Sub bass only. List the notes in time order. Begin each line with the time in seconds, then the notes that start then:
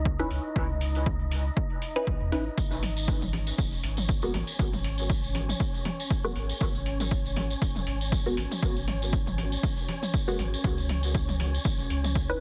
Already playing: C#2
0.30 C#2
0.56 C#2
2.07 B1
2.21 E2
2.32 G#1
2.58 G#1
3.58 D#1
3.84 G#1
4.34 G#1
4.59 G#1
6.36 G#1
6.61 G#1
7.62 D#1
7.87 G#1
8.37 G#1
8.63 G#1
10.39 G#1
10.64 C#2
11.65 G#1
11.90 C#2